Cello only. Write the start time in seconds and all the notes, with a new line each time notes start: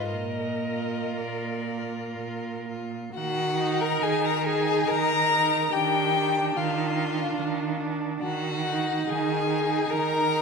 0.12 A#2
1.18 A#2
2.18 A#2
3.14 D#3
4.02 D#3
4.88 D#3
5.73 D#3
6.56 D#3
7.38 D#3
8.21 D#3
9.08 D#3
9.89 D#3